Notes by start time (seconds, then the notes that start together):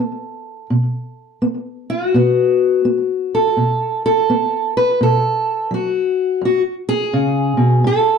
Already playing: A4
0.00 B3
0.70 B2
1.42 B3
1.90 F#4
2.14 B2 B3
2.85 B3
3.35 A4
3.57 B2
4.06 A4
4.30 B3
4.77 B4
5.01 B2 A4
5.71 F#3 F#4
6.41 F#2 F#4
6.89 G#4
7.13 C#3
7.57 B2
7.84 A2 A4